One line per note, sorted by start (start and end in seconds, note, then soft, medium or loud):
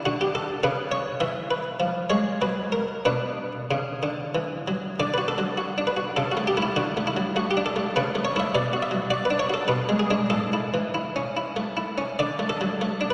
0.00 0.60 D4 soft
0.06 0.48 D3 medium
0.06 0.21 F#4 medium
0.21 0.36 G4 medium
0.35 0.64 A4 medium
0.63 1.05 C#3 medium
0.63 0.88 B4 medium
0.92 1.21 C#5 medium
1.20 1.63 E3 medium
1.20 1.50 E5 medium
1.51 2.11 B4 medium
1.80 2.09 F3 medium
2.10 2.40 G#3 medium
2.10 2.41 C#5 medium
2.42 2.87 F#3 soft
2.42 2.73 B4 medium
2.72 3.05 A#4 medium
3.05 3.52 B2 medium
3.05 4.95 D4 soft
3.05 4.43 B4 medium
3.71 4.01 C#3 soft
4.03 4.34 D3 soft
4.35 4.66 E3 medium
4.68 4.97 F#3 soft
5.00 5.19 D3 medium
5.00 5.14 D5 medium
5.14 5.29 B4 medium
5.18 5.39 F#4 soft
5.28 5.79 A4 medium
5.38 5.59 F#3 soft
5.58 5.79 F#4 soft
5.78 5.99 D4 soft
5.87 6.17 B4 medium
5.97 6.17 F#4 soft
6.17 6.36 C#3 medium
6.17 6.32 A4 medium
6.32 6.47 F#4 medium
6.37 6.56 A3 soft
6.47 6.62 G4 medium
6.57 6.71 A3 soft
6.57 6.61 E4 soft
6.62 6.77 E4 medium
6.76 6.96 D3 medium
6.76 7.02 F#4 medium
6.97 7.17 A3 soft
7.07 7.36 E4 medium
7.17 7.37 F#3 soft
7.36 7.56 A3 soft
7.36 7.50 F#4 medium
7.51 7.65 G4 medium
7.57 7.76 D4 soft
7.66 7.90 A4 medium
7.76 7.95 A3 soft
7.96 8.14 C#3 medium
7.96 8.24 B4 medium
8.15 8.35 A3 soft
8.25 8.38 C#5 medium
8.36 8.49 A3 soft
8.36 8.49 E4 medium
8.36 8.53 E5 medium
8.55 8.72 B2 medium
8.55 8.83 D5 medium
8.73 8.93 F#4 medium
8.82 9.11 E5 medium
8.91 9.11 F#3 soft
9.10 9.31 F#4 soft
9.10 9.25 D5 medium
9.25 9.40 B4 medium
9.30 9.51 D4 medium
9.39 9.54 C#5 medium
9.50 9.69 F#4 soft
9.54 9.69 A4 medium
9.68 9.89 B2 medium
9.68 9.99 B4 medium
9.89 10.10 G#3 soft
9.99 10.27 G#4 medium
10.10 10.26 G#3 soft
10.10 10.26 D4 soft
10.30 10.51 A2 medium
10.30 11.37 A4 medium
10.53 10.75 E4 soft
10.74 10.96 E3 soft
10.94 11.16 E4 soft
11.16 11.37 C#4 soft
11.37 11.58 E4 soft
11.56 11.78 A3 soft
11.77 11.99 E4 soft
11.98 12.18 C#4 soft
12.19 12.39 D3 medium
12.19 12.49 D5 medium
12.39 12.60 A3 soft
12.49 13.10 A4 medium
12.61 12.81 F#3 soft
12.81 13.02 A3 soft
13.01 13.14 D4 soft
13.11 13.14 B4 medium